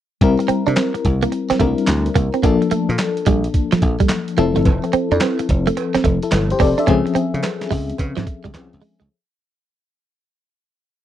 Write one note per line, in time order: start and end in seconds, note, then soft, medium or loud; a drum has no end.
0.21 0.34 C2 loud
0.21 1.57 G3 medium
0.21 1.58 C4 medium
0.21 1.58 E4 medium
0.21 1.58 A#4 medium
0.21 kick loud
0.21 closed hi-hat medium
0.39 muted clean electric guitar stroke soft
0.39 closed hi-hat soft
0.48 0.63 C4 medium
0.48 muted slap bass stroke soft
0.48 closed hi-hat medium
0.67 0.74 C3 medium
0.67 0.75 D4 medium
0.67 closed hi-hat soft
0.76 0.91 C4 medium
0.76 snare loud
0.76 clap medium
0.76 closed hi-hat medium
0.94 muted clean electric guitar stroke soft
0.94 closed hi-hat medium
1.05 1.24 C2 medium
1.05 kick medium
1.05 closed hi-hat medium
1.22 1.30 A#3 medium
1.22 closed hi-hat medium
1.32 muted clean electric guitar stroke soft
1.32 closed hi-hat medium
1.50 1.58 C4 medium
1.50 muted slap bass stroke soft
1.50 snare medium
1.50 closed hi-hat medium
1.60 1.73 C2 medium
1.60 2.43 G3 medium
1.60 1.74 A3 medium
1.60 2.44 C4 medium
1.60 1.69 D4 soft
1.60 2.44 A#4 medium
1.60 kick medium
1.60 closed hi-hat medium
1.67 2.47 E4 medium
1.78 closed hi-hat soft
1.87 2.08 D2 medium
1.87 muted clean electric guitar stroke soft
1.87 snare loud
1.87 clap loud
1.87 closed hi-hat medium
2.06 closed hi-hat soft
2.15 2.28 C2 medium
2.15 2.30 A#3 medium
2.15 kick medium
2.15 closed hi-hat medium
2.34 2.42 C4 medium
2.34 closed hi-hat soft
2.43 2.56 A#1 loud
2.43 4.33 F3 medium
2.43 2.58 A#3 medium
2.43 4.34 A#3 medium
2.43 4.34 D4 medium
2.43 4.35 A4 medium
2.43 kick loud
2.43 closed hi-hat medium
2.62 muted clean electric guitar stroke soft
2.62 closed hi-hat soft
2.71 2.86 A3 medium
2.71 muted slap bass stroke soft
2.71 closed hi-hat medium
2.89 2.96 A#2 medium
2.89 closed hi-hat medium
2.99 snare loud
2.99 clap medium
2.99 closed hi-hat medium
3.17 closed hi-hat soft
3.26 3.46 A#1 medium
3.26 3.41 G3 medium
3.26 kick medium
3.26 closed hi-hat medium
3.44 closed hi-hat medium
3.54 kick medium
3.54 closed hi-hat medium
3.72 3.80 F3 medium
3.72 muted slap bass stroke soft
3.72 snare medium
3.72 closed hi-hat medium
3.82 3.95 A#1 medium
3.82 muted clean electric guitar stroke soft
3.82 kick medium
3.82 closed hi-hat medium
4.00 4.08 G3 medium
4.00 kick medium
4.00 closed hi-hat soft
4.09 muted clean electric guitar stroke soft
4.09 snare loud
4.09 clap loud
4.09 closed hi-hat medium
4.28 closed hi-hat medium
4.37 4.51 F1 loud
4.37 6.56 F3 medium
4.37 4.53 A3 medium
4.37 6.56 C4 medium
4.37 6.02 E4 medium
4.37 6.02 A4 medium
4.37 closed hi-hat medium
4.56 4.63 G1 medium
4.56 4.64 A3 medium
4.56 closed hi-hat soft
4.65 4.78 F1 loud
4.65 kick loud
4.65 closed hi-hat medium
4.65 cowbell medium
4.84 muted clean electric guitar stroke soft
4.84 closed hi-hat soft
4.93 5.08 C4 medium
4.93 muted slap bass stroke soft
4.93 closed hi-hat medium
5.12 5.18 F2 medium
5.12 5.19 D4 medium
5.12 closed hi-hat soft
5.21 5.36 C4 medium
5.21 snare loud
5.21 clap medium
5.21 closed hi-hat medium
5.21 cowbell medium
5.39 muted clean electric guitar stroke soft
5.39 closed hi-hat medium
5.49 5.69 F1 medium
5.49 kick medium
5.49 closed hi-hat medium
5.67 5.75 A3 medium
5.67 closed hi-hat medium
5.77 muted clean electric guitar stroke soft
5.77 closed hi-hat medium
5.77 cowbell medium
5.95 6.02 C4 medium
5.95 muted slap bass stroke soft
5.95 snare medium
5.95 closed hi-hat medium
6.04 6.17 F1 loud
6.04 6.19 A3 medium
6.04 kick medium
6.04 closed hi-hat medium
6.23 6.50 E4 medium
6.23 6.49 A4 medium
6.23 closed hi-hat soft
6.32 6.52 G1 medium
6.32 muted clean electric guitar stroke soft
6.32 snare loud
6.32 clap medium
6.32 closed hi-hat medium
6.32 cowbell medium
6.50 6.60 G4 medium
6.50 6.60 C5 medium
6.50 closed hi-hat medium
6.60 6.73 F1 loud
6.60 6.75 C4 medium
6.60 6.78 A4 medium
6.60 6.78 D5 medium
6.60 kick medium
6.60 open hi-hat medium
6.78 6.86 D4 medium
6.78 7.05 A4 medium
6.78 7.05 E5 medium
6.78 closed hi-hat soft
6.87 7.01 C#2 loud
6.87 8.51 F3 medium
6.87 8.52 C4 medium
6.87 7.02 C#4 medium
6.87 8.52 C#4 medium
6.87 8.52 G#4 medium
6.87 kick loud
6.87 closed hi-hat medium
6.87 cowbell medium
7.06 muted clean electric guitar stroke soft
7.06 closed hi-hat soft
7.15 7.30 C4 medium
7.15 muted slap bass stroke soft
7.15 closed hi-hat medium
7.34 7.41 C#3 medium
7.34 closed hi-hat medium
7.43 snare loud
7.43 clap medium
7.43 closed hi-hat medium
7.43 cowbell medium
7.61 snare medium
7.61 closed hi-hat medium
7.71 7.91 C#2 medium
7.71 7.85 G#3 medium
7.71 kick medium
7.71 open hi-hat medium
7.90 closed hi-hat medium
7.98 8.12 C#3 loud
7.98 kick medium
7.98 closed hi-hat medium
7.98 cowbell medium
8.17 8.24 G#2 medium
8.17 8.25 F3 medium
8.17 snare medium
8.17 closed hi-hat medium
8.27 muted clean electric guitar stroke soft
8.27 kick loud
8.27 closed hi-hat medium
8.44 8.52 C#2 medium
8.44 8.52 G3 medium
8.44 kick loud
8.44 closed hi-hat soft
8.54 8.68 C2 medium
8.54 9.10 F3 medium
8.54 9.10 C4 soft
8.54 9.11 C#4 soft
8.54 9.11 G#4 medium
8.54 muted clean electric guitar stroke soft
8.54 snare loud
8.54 clap medium
8.54 closed hi-hat medium
8.54 cowbell medium
8.73 8.80 C#2 medium
8.73 closed hi-hat medium
8.82 8.96 G#3 medium
8.82 open hi-hat medium
9.00 9.08 C#2 medium
9.00 9.08 G#3 medium
9.00 closed hi-hat soft